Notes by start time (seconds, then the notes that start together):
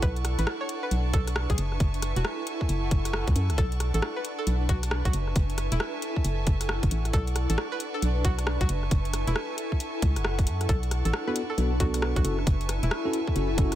Already playing: E4 A4 F#5 A5 C#6
0.02 B1 D4 B4 D5 F#5, kick, closed hi-hat
0.16 closed hi-hat
0.25 cross-stick, closed hi-hat
0.39 A1 B4, closed hi-hat
0.47 cross-stick
0.61 C#5
0.69 closed hi-hat
0.83 B4
0.91 B1, closed hi-hat
1.13 B1 A4, kick, closed hi-hat
1.27 cross-stick, closed hi-hat
1.36 cross-stick
1.50 B1 G#4, kick, closed hi-hat
1.58 F#1 E4 E5 G#5, closed hi-hat
1.72 cross-stick
1.80 F#1, kick, closed hi-hat
1.87 A4
1.94 closed hi-hat
2.02 F#5, cross-stick, closed hi-hat
2.16 E1 F#4, closed hi-hat
2.25 cross-stick
2.47 closed hi-hat
2.61 kick
2.69 F#1, closed hi-hat
2.91 F#1, kick, closed hi-hat
3.05 cross-stick, closed hi-hat
3.13 cross-stick
3.27 C#2, kick, closed hi-hat
3.36 F#2, closed hi-hat
3.50 C#2, cross-stick, closed hi-hat
3.58 B1 D4 A4 D5 F#5, kick, closed hi-hat
3.72 closed hi-hat
3.78 B4, cross-stick, closed hi-hat
3.94 A1 A4, closed hi-hat
4.02 cross-stick
4.16 B4
4.25 closed hi-hat
4.39 A4
4.47 B1, closed hi-hat
4.69 B1 F#4, kick, closed hi-hat
4.83 cross-stick, closed hi-hat
4.91 cross-stick
5.05 B1 F#4, kick, closed hi-hat
5.13 F#1 E4 E5 G#5 A5, closed hi-hat
5.27 A4, cross-stick
5.36 F#1, kick, closed hi-hat
5.50 closed hi-hat
5.58 cross-stick, closed hi-hat
5.72 E1 E4, closed hi-hat
5.80 cross-stick
5.87 F#5
6.02 closed hi-hat
6.16 kick
6.25 F#1, closed hi-hat
6.47 F#1, kick, closed hi-hat
6.61 cross-stick, closed hi-hat
6.69 cross-stick
6.83 F#1, kick, closed hi-hat
6.91 A1, closed hi-hat
7.05 cross-stick, closed hi-hat
7.13 B1 D4 A4 D5 F#5 A5 C#6, kick, closed hi-hat
7.27 closed hi-hat
7.32 B4, cross-stick, closed hi-hat
7.50 A1 A4, closed hi-hat
7.58 cross-stick
7.72 B4
7.80 closed hi-hat
7.94 A4
8.02 B1, closed hi-hat
8.25 B1 F#4, kick, closed hi-hat
8.39 cross-stick, closed hi-hat
8.47 cross-stick
8.61 B1 F#4, kick, closed hi-hat
8.69 F#1 E4 E5 G#5, closed hi-hat
8.76 A4
8.83 cross-stick
8.91 F#1, kick, closed hi-hat
9.05 closed hi-hat
9.13 cross-stick, closed hi-hat
9.27 E1 E4 F#5, closed hi-hat
9.36 cross-stick
9.58 closed hi-hat
9.72 kick
9.80 closed hi-hat
10.02 C#2, kick, closed hi-hat
10.16 F#1, cross-stick, closed hi-hat
10.25 cross-stick
10.39 kick, closed hi-hat
10.47 F#2, closed hi-hat
10.61 cross-stick, closed hi-hat
10.69 B1 D4 A4 D5 F#5 C#6, kick, closed hi-hat
10.75 B4
10.83 closed hi-hat
10.91 cross-stick, closed hi-hat
11.05 A1 A4, closed hi-hat
11.13 cross-stick
11.27 B3 D4 F#4 A4 B4
11.36 closed hi-hat
11.50 A4
11.58 B1 B3 D4 F#4 A4, closed hi-hat
11.80 B1 B3 D4 F#4 A4, kick, closed hi-hat
11.94 cross-stick, closed hi-hat
12.02 cross-stick
12.16 B1 F#4, kick, closed hi-hat
12.24 F#1 C#4 E4 F#4 A4 E5 G#5 A5, closed hi-hat
12.31 A4
12.39 cross-stick
12.47 F#1, kick, closed hi-hat
12.61 closed hi-hat
12.69 F#5, cross-stick, closed hi-hat
12.83 E1 E4, closed hi-hat
12.91 cross-stick
13.05 C#4 E4 F#4 A4
13.13 closed hi-hat
13.27 kick
13.36 F#1 C#4 E4 F#4 A4, closed hi-hat
13.58 F#1 C#4 E4 F#4 A4, kick, closed hi-hat
13.72 cross-stick, closed hi-hat